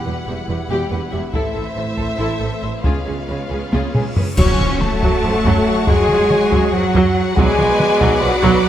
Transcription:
0.00 1.29 E3 soft
0.00 1.30 G3 soft
0.00 1.30 B3 soft
0.00 2.80 E4 soft
0.00 1.30 F#4 soft
0.00 1.30 B4 soft
0.00 1.30 F#5 soft
0.06 0.14 E1 soft
0.06 0.15 E2 soft
0.06 0.15 G4 soft
0.06 0.14 B4 soft
0.27 0.35 E1 soft
0.27 0.36 E2 soft
0.27 0.36 G4 soft
0.27 0.35 E5 soft
0.49 0.57 E1 soft
0.49 0.57 E2 soft
0.49 0.58 G4 soft
0.49 0.57 B4 soft
0.70 0.78 E1 medium
0.70 0.79 E2 medium
0.70 0.90 G4 medium
0.91 1.00 E1 soft
0.91 0.99 E2 soft
0.91 0.99 G4 medium
0.91 0.99 B4 soft
1.12 1.21 E1 soft
1.12 1.21 E2 soft
1.12 1.20 G4 soft
1.12 1.20 E5 soft
1.32 1.41 A1 medium
1.32 1.42 A2 medium
1.32 2.81 E3 medium
1.32 2.84 A3 medium
1.32 2.81 A3 medium
1.32 2.84 C4 medium
1.32 2.81 E4 medium
1.32 1.53 E4 medium
1.32 1.54 A4 medium
1.32 2.84 C5 medium
1.32 2.84 E5 medium
1.32 2.81 E5 medium
1.32 taiko medium
1.54 1.63 A1 soft
1.54 1.63 A2 soft
1.54 1.62 A4 soft
1.54 1.64 A4 soft
1.75 1.84 A1 soft
1.75 1.84 A2 soft
1.75 1.85 A4 soft
1.75 1.83 C5 soft
1.97 2.06 A1 soft
1.97 2.05 A2 soft
1.97 2.05 A4 soft
1.97 2.07 A4 soft
1.97 taiko soft
2.17 2.27 A1 medium
2.17 2.26 A2 medium
2.17 2.38 E4 medium
2.17 2.39 A4 medium
2.39 2.49 A1 soft
2.39 2.49 A2 soft
2.39 2.47 A4 soft
2.39 2.49 A4 soft
2.61 2.71 A1 soft
2.61 2.71 A2 soft
2.61 2.71 A4 soft
2.61 2.69 C5 soft
2.83 2.93 C#2 medium
2.83 2.93 C#3 soft
2.83 4.16 C#3 soft
2.83 4.37 G#3 soft
2.83 4.14 G#3 soft
2.83 4.15 B3 soft
2.83 4.37 F4 soft
2.83 3.04 F4 soft
2.83 4.13 F4 soft
2.83 3.05 G#4 medium
2.83 4.37 B4 soft
2.83 4.36 C#5 soft
2.83 4.15 F5 soft
2.83 taiko medium
2.83 reverse cymbal soft
3.06 3.15 C#2 soft
3.06 3.15 C#3 soft
3.06 3.14 G#4 soft
3.06 3.15 G#4 soft
3.27 3.37 C#2 soft
3.27 3.37 C#3 soft
3.27 3.38 G#4 soft
3.27 3.35 B4 soft
3.49 3.59 C#2 soft
3.49 3.59 C#3 soft
3.49 3.57 G#4 soft
3.49 3.60 G#4 soft
3.72 3.81 C#2 medium
3.72 3.80 C#3 medium
3.72 3.92 F4 soft
3.72 3.93 G#4 soft
3.72 taiko high medium
3.94 4.02 C#2 soft
3.94 4.02 C#3 soft
3.94 4.02 G#4 soft
3.94 4.03 G#4 soft
3.94 taiko low-mid medium
4.16 4.24 C#2 soft
4.16 4.24 C#3 soft
4.16 4.25 G#4 soft
4.16 4.24 B4 soft
4.16 taiko low medium
4.37 4.46 F#2 medium
4.37 4.98 F#2 loud
4.37 7.33 F#3 medium
4.37 4.58 F#3 medium
4.37 4.77 C#4 medium
4.37 4.78 C#4 medium
4.37 8.69 F#4 medium
4.37 7.33 F#4 medium
4.37 7.33 C#5 medium
4.37 4.78 C#5 loud
4.37 7.33 F#5 medium
4.37 7.33 C#6 medium
4.37 4.78 C#6 medium
4.37 4.83 C#6 medium
4.37 concert bass drum medium
4.37 taiko loud
4.37 crash medium
4.37 impact medium
4.60 4.68 F#2 medium
4.60 4.68 F3 medium
4.60 taiko mid medium
4.81 5.87 A3 medium
4.81 5.85 A3 medium
4.81 5.86 A4 medium
4.81 5.88 A5 medium
4.81 taiko mid medium
5.02 5.11 F#2 medium
5.02 5.22 F#3 medium
5.02 taiko medium
5.24 5.32 F#2 medium
5.24 5.32 F3 medium
5.45 5.53 F#2 loud
5.45 5.65 F#3 medium
5.45 taiko medium
5.87 5.96 F#2 medium
5.87 6.08 F#3 medium
5.87 6.73 G#3 medium
5.87 6.72 G#3 medium
5.87 6.71 G#4 loud
5.87 6.72 G#5 medium
5.87 taiko loud
6.09 6.19 F#2 medium
6.09 6.17 F3 medium
6.09 taiko mid medium
6.31 taiko mid medium
6.52 6.60 F#2 medium
6.52 6.72 F#3 medium
6.52 taiko medium
6.73 6.81 F#2 medium
6.73 6.82 F3 medium
6.73 7.36 F#3 medium
6.73 7.37 F#4 loud
6.73 7.35 F#5 medium
6.73 7.38 F#5 medium
6.94 7.02 F#2 loud
6.94 7.14 F#3 medium
6.94 taiko medium
7.36 7.45 B1 medium
7.36 7.57 F#3 loud
7.36 8.20 G#3 loud
7.36 8.21 G#3 medium
7.36 8.69 B3 loud
7.36 8.20 G#4 loud
7.36 8.69 B4 loud
7.36 8.69 B4 medium
7.36 8.69 D5 loud
7.36 8.69 F#5 medium
7.36 8.23 G#5 medium
7.36 8.22 G#5 loud
7.36 8.69 D6 medium
7.36 taiko loud
7.58 7.66 B1 medium
7.58 7.67 F3 medium
7.58 taiko mid medium
7.80 taiko mid medium
8.01 8.09 B1 medium
8.01 8.21 F#3 loud
8.01 taiko medium
8.21 8.30 B1 medium
8.21 8.29 F3 medium
8.21 8.69 F#3 medium
8.21 8.69 F#4 loud
8.21 8.69 F#5 medium
8.43 8.51 B1 loud
8.43 8.63 F#3 loud
8.43 taiko medium

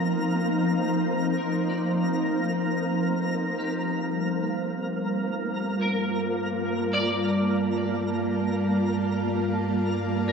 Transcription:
0.00 3.59 F3 medium
0.00 3.59 A#3 medium
0.00 5.01 C4 medium
0.00 3.60 D#4 medium
0.00 3.59 A#4 medium
0.00 6.57 C5 medium
0.00 3.63 A#5 medium
1.37 4.11 A#4 medium
1.68 4.41 D5 medium
3.59 10.32 G2 medium
3.59 10.32 G3 medium
3.59 10.32 A#3 medium
3.59 7.32 G4 medium
3.59 10.32 A#4 medium
3.99 10.32 A#3 medium
4.65 10.32 F4 medium
5.81 9.54 A#4 medium
6.10 10.32 A5 medium
6.14 10.32 D5 medium
6.93 10.32 D5 medium
10.28 10.32 A#4 medium

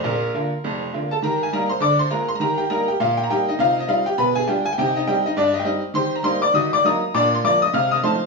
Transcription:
0.04 0.29 A#1 medium
0.04 0.30 A#2 medium
0.04 0.95 A#4 medium
0.34 0.51 D3 soft
0.34 0.51 A#3 soft
0.34 0.51 F4 soft
0.64 0.89 F1 soft
0.64 0.89 F2 soft
0.93 1.10 D3 soft
0.93 1.10 A#3 soft
0.93 1.10 F4 soft
1.11 1.23 A4 soft
1.11 1.21 A5 medium
1.22 1.48 D#3 medium
1.22 1.41 G4 soft
1.22 1.42 A#4 medium
1.22 1.40 A#5 medium
1.43 1.51 G#5 medium
1.52 1.69 G3 soft
1.52 1.69 A#3 soft
1.52 1.69 D#4 soft
1.52 1.70 A#4 medium
1.52 1.68 A#5 medium
1.69 1.82 C5 medium
1.69 1.80 C6 medium
1.80 2.06 D3 medium
1.80 1.99 D5 medium
1.80 1.97 D6 loud
1.99 2.11 C5 medium
1.99 2.10 C6 medium
2.10 2.27 G#3 soft
2.10 2.27 A#3 soft
2.10 2.27 F4 soft
2.10 2.28 A#4 medium
2.10 2.26 A#5 medium
2.28 2.35 C6 medium
2.35 2.39 A#5 medium
2.40 2.65 D#3 medium
2.40 2.57 G4 soft
2.40 2.58 A#4 medium
2.40 2.56 A#5 loud
2.58 2.70 G4 medium
2.58 2.68 G5 medium
2.70 2.86 G3 soft
2.70 2.86 A#3 soft
2.70 2.87 D#4 soft
2.70 2.87 A#4 medium
2.70 2.85 A#5 medium
2.88 3.00 G4 medium
2.88 2.98 G5 medium
3.00 3.25 A#2 medium
3.00 3.17 F4 medium
3.00 3.15 F5 medium
3.17 3.23 G5 medium
3.23 3.29 A#5 medium
3.30 3.46 G3 soft
3.30 3.46 A#3 soft
3.30 3.46 D#4 soft
3.30 3.47 G4 medium
3.30 3.45 G5 medium
3.48 3.59 D#4 medium
3.48 3.58 D#5 medium
3.59 3.84 C3 medium
3.59 3.77 D#4 soft
3.59 3.78 F4 medium
3.59 3.76 F5 loud
3.80 3.88 D#5 medium
3.88 4.04 G3 soft
3.88 4.04 C4 soft
3.88 4.05 D#4 soft
3.88 4.05 F4 medium
3.88 4.03 F5 medium
4.06 4.18 G4 medium
4.06 4.16 G5 medium
4.18 4.43 B2 medium
4.18 4.35 B4 medium
4.18 4.33 B5 loud
4.35 4.47 G#4 medium
4.35 4.45 G#5 medium
4.47 4.64 G3 soft
4.47 4.63 D4 soft
4.47 4.64 F4 soft
4.47 4.64 G4 medium
4.47 4.62 G5 medium
4.65 4.71 G#5 loud
4.73 4.78 G5 medium
4.78 5.02 C3 medium
4.78 4.95 D#4 soft
4.78 4.95 G4 medium
4.78 4.93 G5 loud
4.96 5.07 D#4 medium
4.96 5.06 D#5 medium
5.07 5.23 G3 soft
5.07 5.24 C4 soft
5.07 5.24 D#4 medium
5.07 5.24 G4 medium
5.07 5.22 G5 medium
5.26 5.37 D#4 medium
5.26 5.35 D#5 medium
5.37 5.61 G2 medium
5.37 5.53 D4 medium
5.37 5.52 D5 medium
5.54 5.59 D#5 medium
5.60 5.65 G5 medium
5.64 5.81 G3 soft
5.64 5.81 C4 soft
5.64 5.82 D#4 medium
5.64 5.80 D#5 medium
5.94 6.19 D#3 medium
5.94 6.12 G4 medium
5.94 6.14 C5 medium
5.94 6.11 C6 loud
6.16 6.23 A#5 medium
6.23 6.39 G3 soft
6.23 6.40 A#3 soft
6.23 6.40 D#4 medium
6.23 6.41 C5 medium
6.23 6.39 C6 loud
6.42 6.54 D5 medium
6.42 6.52 D6 loud
6.54 6.79 D#3 medium
6.54 6.71 F#4 medium
6.54 6.71 D#5 medium
6.54 6.69 D#6 loud
6.73 6.84 D5 medium
6.73 6.83 D6 loud
6.84 7.00 F#3 soft
6.84 7.01 A#3 soft
6.84 7.01 D#4 medium
6.84 7.12 D#5 medium
6.84 7.12 A#5 medium
6.84 7.10 D#6 medium
7.14 7.39 A#2 medium
7.14 7.31 D4 medium
7.14 7.33 D5 medium
7.14 7.30 D6 loud
7.35 7.42 C6 medium
7.44 7.60 F3 soft
7.44 7.60 A#3 medium
7.44 7.60 F4 medium
7.44 7.61 D5 medium
7.44 7.58 D6 loud
7.62 7.73 D#5 medium
7.62 7.71 D#6 loud
7.73 7.98 C3 medium
7.73 7.90 F5 medium
7.73 7.88 F6 loud
7.91 8.02 D#5 medium
7.91 8.01 D#6 loud
8.03 8.19 F3 soft
8.03 8.19 A3 soft
8.03 8.19 D#4 soft
8.03 8.26 C5 medium
8.03 8.26 A5 medium
8.03 8.26 C6 medium

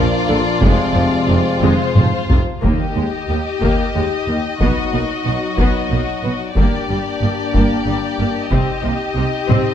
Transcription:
0.00 0.62 A#2 medium
0.00 2.30 F3 medium
0.00 0.62 A#3 medium
0.00 0.61 D4 medium
0.00 2.38 F4 medium
0.00 1.62 D5 medium
0.28 0.36 A#1 medium
0.28 0.42 A#1 medium
0.28 0.36 A#2 medium
0.28 0.37 D3 medium
0.61 0.69 F1 medium
0.61 0.75 F1 medium
0.61 0.70 F2 medium
0.61 2.27 C3 medium
0.61 0.93 G#3 medium
0.61 2.27 G#3 medium
0.61 2.31 C4 medium
0.61 taiko medium
0.94 1.02 F1 soft
0.94 1.09 F1 soft
0.94 1.04 F2 medium
0.94 1.02 F3 soft
0.94 taiko low-mid soft
1.28 1.37 F1 soft
1.28 1.42 F1 medium
1.28 1.37 F2 soft
1.28 1.36 C3 soft
1.62 1.70 F1 medium
1.62 1.76 F1 medium
1.62 1.71 F2 medium
1.62 1.93 G#3 medium
1.62 2.42 C5 medium
1.62 taiko high medium
1.96 2.04 F1 medium
1.96 2.10 F1 soft
1.96 2.04 F2 soft
1.96 2.04 F3 soft
1.96 taiko mid medium
2.29 2.37 F1 medium
2.29 2.43 F1 soft
2.29 2.38 F2 soft
2.29 2.37 C3 soft
2.29 taiko low medium
2.62 2.70 D#2 medium
2.62 2.71 D#2 medium
2.62 3.58 D#3 medium
2.62 2.93 A#3 medium
2.62 6.52 D#4 medium
2.62 4.56 G4 medium
2.62 4.57 G4 soft
2.62 6.52 D#5 soft
2.62 taiko medium
2.95 3.03 D#2 soft
2.95 3.04 D#2 soft
2.95 3.04 G#3 soft
3.28 3.36 D#2 soft
3.28 3.37 D#2 soft
3.28 3.38 A#3 soft
3.62 3.70 D#2 medium
3.62 3.93 A#3 medium
3.62 taiko medium
3.95 4.03 D#2 soft
3.95 4.04 D#2 soft
3.95 4.04 G#3 soft
4.27 4.35 D#2 soft
4.27 4.37 D#2 soft
4.27 4.36 A#3 soft
4.60 4.68 B1 medium
4.60 4.69 B2 medium
4.60 6.52 F#3 medium
4.60 4.91 B3 soft
4.60 6.52 F#4 soft
4.60 taiko medium
4.93 5.02 B1 soft
4.93 5.01 B2 soft
4.93 5.02 A#3 soft
5.26 5.34 B1 soft
5.26 5.34 B2 soft
5.26 5.34 B3 soft
5.58 5.66 B1 soft
5.58 5.67 B2 medium
5.58 5.89 B3 medium
5.58 taiko medium
5.91 5.99 B1 soft
5.91 5.99 B2 soft
5.91 5.99 A#3 soft
6.23 6.32 B1 soft
6.23 6.33 B2 soft
6.23 6.31 B3 soft
6.54 6.65 G1 medium
6.54 6.65 G2 medium
6.54 6.86 A#3 medium
6.54 8.47 A#3 medium
6.54 8.47 D4 medium
6.54 9.74 G4 soft
6.54 8.47 D5 soft
6.54 taiko medium
6.89 6.97 G1 soft
6.89 6.97 G2 soft
6.89 6.97 G3 soft
7.21 7.29 G1 soft
7.21 7.29 G2 soft
7.21 7.29 A#3 soft
7.53 7.62 G1 soft
7.53 7.61 G2 medium
7.53 7.84 A#3 medium
7.53 taiko medium
7.86 7.95 G1 soft
7.86 7.94 G2 soft
7.86 7.95 G3 soft
8.19 8.27 G1 soft
8.19 8.27 G2 soft
8.19 8.28 A#3 medium
8.51 8.60 C2 medium
8.51 8.59 C3 medium
8.51 8.82 C4 soft
8.51 9.74 D#4 medium
8.51 9.74 G4 medium
8.51 9.74 D#5 soft
8.51 taiko medium
8.83 8.92 C2 soft
8.83 8.91 C3 soft
8.83 8.92 A#3 soft
9.16 9.25 C2 soft
9.16 9.24 C3 soft
9.16 9.24 C4 soft
9.49 9.57 C2 medium
9.49 9.57 C3 medium
9.49 9.74 C4 medium
9.49 taiko mid medium

